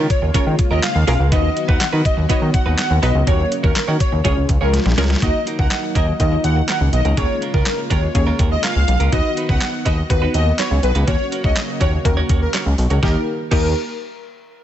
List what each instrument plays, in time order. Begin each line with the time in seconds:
Already playing: analog synth pad C#3 G#3 A#3 F4
0.10 digital synth lead C#5, muted clean electric guitar stroke, kick, closed hi-hat
0.22 analog synth bass D#2, muted clean electric guitar stroke
0.34 analog synth bass D#3, clean electric guitar G#3 C#4 F4 A#4, synth pluck C#4 F4 G#4 C#5, digital synth lead C#5, kick, closed hi-hat
0.46 analog synth bass D#3, muted clean electric guitar stroke
0.59 muted clean electric guitar stroke, kick, closed hi-hat
0.71 analog synth bass D#2, clean electric guitar G#3 C#4 F4 A#4, digital synth lead D#5
0.83 digital synth lead F5, snare, clap, closed hi-hat
0.95 analog synth bass D#2, muted clean electric guitar stroke
1.07 analog synth bass B1, clean electric guitar G#3 C#4 F4 A#4, synth pluck C#4 F4 G#4 A#4, open hi-hat
1.20 analog synth bass C#2, muted clean electric guitar stroke
1.32 analog synth bass D#2, analog synth pad D#3 F#3 B3 F#4, clean electric guitar B3 D#4 F#4 B4, synth pluck B3 D#4 F#4 B4, digital synth lead D#5, kick, closed hi-hat
1.44 muted clean electric guitar stroke
1.56 muted clean electric guitar stroke, closed hi-hat
1.68 analog synth bass D#2, clean electric guitar B3 D#4 F#4 B4, digital synth lead F#5, kick
1.80 analog synth bass D#3, muted clean electric guitar stroke, snare, clap, closed hi-hat
1.93 analog synth bass D#3, clean electric guitar B3 D#4 F#4 B4
2.05 digital synth lead D#5, muted clean electric guitar stroke, kick, closed hi-hat
2.17 analog synth bass D#2, muted clean electric guitar stroke
2.29 analog synth bass D#3, clean electric guitar B3 D#4 F#4 B4, synth pluck B3 D#4 F#4 C#5, digital synth lead D#5, kick, closed hi-hat
2.42 analog synth bass D#3, muted clean electric guitar stroke
2.54 digital synth lead F#5, muted clean electric guitar stroke, kick, closed hi-hat
2.66 analog synth bass D#2, clean electric guitar B3 D#4 F#4 B4
2.78 digital synth lead F#5, snare, clap, closed hi-hat
2.90 analog synth bass D#2, muted clean electric guitar stroke
3.02 analog synth bass B1, clean electric guitar B3 D#4 F#4 B4, synth pluck B3 D#4 F#4 B4, digital synth lead D#5, open hi-hat
3.15 analog synth bass C#2, muted clean electric guitar stroke
3.27 analog synth bass D#2, analog synth pad C#3 A#3, synth pluck A#3 C#4 F#4 A#4, clean electric guitar C#4 F#4 A#4 C#5, digital synth lead C#5, kick, closed hi-hat
3.39 muted clean electric guitar stroke
3.51 muted clean electric guitar stroke, closed hi-hat
3.63 analog synth bass D#2, clean electric guitar C#4 F#4 A#4 C#5, digital synth lead A#4, kick
3.76 analog synth bass D#3, muted clean electric guitar stroke, snare, clap, closed hi-hat
3.88 analog synth bass D#3, clean electric guitar C#4 F#4 A#4 C#5
4.00 digital synth lead C#5, muted clean electric guitar stroke, kick, closed hi-hat
4.12 analog synth bass D#2, muted clean electric guitar stroke
4.24 analog synth bass C#2, analog synth pad F3 G#3 F4, synth pluck G#3 C#4 F4 G#4, clean electric guitar C#4 F4 G#4 C#5, digital synth lead C#5, kick, closed hi-hat
4.37 analog synth bass C#2, muted clean electric guitar stroke
4.49 analog synth bass C#2, muted clean electric guitar stroke, kick, closed hi-hat
4.61 analog synth bass C#2, clean electric guitar C#4 F4 G#4 C#5, digital synth lead A#4
4.73 muted clean electric guitar stroke, snare, closed hi-hat
4.80 snare
4.85 analog synth bass A#1, muted clean electric guitar stroke, snare
4.92 snare
4.98 analog synth bass C#2, synth pluck G#3 C#4 F4 A#4, clean electric guitar C#4 F4 G#4 C#5, snare, open hi-hat
5.04 snare
5.10 clean electric guitar C#4 F4 G#4 C#5, snare
5.16 snare
5.22 analog synth bass D#2, analog synth pad D#3 F#3 A#3 D#4, clean electric guitar A#3 D#4 F#4 A#4, synth pluck A#3 D#4 F#4, digital synth lead D#5, kick, closed hi-hat
5.46 clean electric guitar A#3 D#4 F#4 A#4, closed hi-hat
5.59 analog synth bass C#2, clean electric guitar A#3 D#4 F#4 A#4, digital synth lead F#5, kick
5.71 muted clean electric guitar stroke, snare, clap, closed hi-hat
5.83 muted clean electric guitar stroke
5.95 analog synth bass D#2, clean electric guitar A#3 D#4 F#4 A#4, digital synth lead D#5, kick, closed hi-hat
6.07 muted clean electric guitar stroke
6.20 analog synth bass D#2, synth pluck A#3 D#4 F4, digital synth lead D#5, muted clean electric guitar stroke, kick, closed hi-hat
6.32 muted clean electric guitar stroke
6.44 analog synth bass D#2, digital synth lead F#5, closed hi-hat
6.56 muted clean electric guitar stroke
6.68 clean electric guitar A#3 D#4 F#4 A#4, digital synth lead F#5, snare, clap, closed hi-hat
6.80 analog synth bass C#2, muted clean electric guitar stroke
6.93 analog synth bass B1, digital synth lead D#5, muted clean electric guitar stroke, closed hi-hat
7.05 analog synth bass C#2, clean electric guitar A#3 D#4 F#4 A#4, closed hi-hat
7.17 analog synth bass D#2, analog synth pad C#3 G#3 A#3 F4, clean electric guitar G#3 C#4 F4 A#4, synth pluck A#3 C#4 G#4, digital synth lead C#5, kick, closed hi-hat
7.41 clean electric guitar G#3 C#4 F4 A#4, closed hi-hat
7.54 analog synth bass C#2, clean electric guitar G#3 C#4 F4 A#4, digital synth lead A#4, kick
7.66 muted clean electric guitar stroke, snare, clap, closed hi-hat
7.78 muted clean electric guitar stroke
7.90 analog synth bass D#2, clean electric guitar G#3 C#4 F4 A#4, digital synth lead C#5, kick, closed hi-hat
8.02 muted clean electric guitar stroke
8.15 analog synth bass D#2, synth pluck A#3 C#4 G#4, digital synth lead C#5, muted clean electric guitar stroke, kick, closed hi-hat
8.27 clean electric guitar G#3 C#4 F4 A#4
8.39 analog synth bass D#2, clean electric guitar G#3 C#4 F4 A#4, kick, closed hi-hat
8.51 digital synth lead D#5, muted clean electric guitar stroke
8.63 clean electric guitar G#3 C#4 F4 A#4, digital synth lead F5, snare, clap, closed hi-hat
8.76 analog synth bass C#2, muted clean electric guitar stroke
8.88 analog synth bass B1, muted clean electric guitar stroke, closed hi-hat
9.00 analog synth bass C#2, clean electric guitar G#3 C#4 F4 A#4, closed hi-hat
9.12 analog synth bass D#2, analog synth pad D#3 F#3 B3 F#4, clean electric guitar B3 D#4 F#4 B4, synth pluck B3 D#4 F#4, digital synth lead D#5, kick, closed hi-hat
9.36 clean electric guitar B3 D#4 F#4 B4, closed hi-hat
9.49 analog synth bass C#2, clean electric guitar B3 D#4 F#4 B4, digital synth lead F#5, kick
9.61 muted clean electric guitar stroke, snare, clap, closed hi-hat
9.73 muted clean electric guitar stroke
9.85 analog synth bass D#2, clean electric guitar B3 D#4 F#4 B4, digital synth lead D#5, kick, closed hi-hat
9.98 muted clean electric guitar stroke
10.10 analog synth bass D#2, synth pluck B3 D#4 F#4, digital synth lead B4, muted clean electric guitar stroke, kick, closed hi-hat
10.22 clean electric guitar B3 D#4 F#4 B4
10.34 analog synth bass D#2, clean electric guitar B3 D#4 F#4 B4, digital synth lead D#5, closed hi-hat
10.46 muted clean electric guitar stroke
10.58 clean electric guitar B3 D#4 F#4 B4, digital synth lead C#5, snare, clap, closed hi-hat
10.71 analog synth bass C#2
10.83 analog synth bass B1, digital synth lead B4, muted clean electric guitar stroke, closed hi-hat
10.95 analog synth bass C#2, clean electric guitar B3 D#4 F#4 B4, closed hi-hat
11.07 analog synth bass D#2, analog synth pad C#3 A#3, synth pluck A#3 C#4 F#4, clean electric guitar C#4 F#4 A#4 C#5, digital synth lead C#5, kick, closed hi-hat
11.31 clean electric guitar C#4 F#4 A#4 C#5, closed hi-hat
11.44 analog synth bass C#2, clean electric guitar C#4 F#4 A#4 C#5, digital synth lead D#5, kick
11.56 muted clean electric guitar stroke, snare, clap, closed hi-hat
11.68 muted clean electric guitar stroke
11.80 analog synth bass D#2, clean electric guitar C#4 F#4 A#4 C#5, digital synth lead C#5, kick, closed hi-hat
11.93 muted clean electric guitar stroke
12.05 analog synth bass D#2, synth pluck A#3 C#4 F#4, digital synth lead A#4, muted clean electric guitar stroke, kick, closed hi-hat
12.17 clean electric guitar C#4 F#4 A#4 C#5
12.29 analog synth bass D#2, clean electric guitar C#4 F#4 A#4 C#5, kick, closed hi-hat
12.42 digital synth lead A#4, muted clean electric guitar stroke
12.54 clean electric guitar C#4 F#4 A#4 C#5, snare, clap, closed hi-hat
12.66 analog synth bass C#2, muted clean electric guitar stroke
12.78 analog synth bass B1, muted clean electric guitar stroke, open hi-hat
12.90 analog synth bass C#2, clean electric guitar C#4 F#4 A#4 C#5, closed hi-hat
13.02 analog synth bass D#2, analog synth pad D#3 G3 A#3 G4, synth pluck A#3 D#4 G4, clean electric guitar D#4 G4 A#4 D#5, digital synth lead A#4, kick, snare
13.51 analog synth bass D#2, synth pluck A#3 D#4 G4, clean electric guitar D#4 G4 A#4 D#5, digital synth lead A#4, kick, crash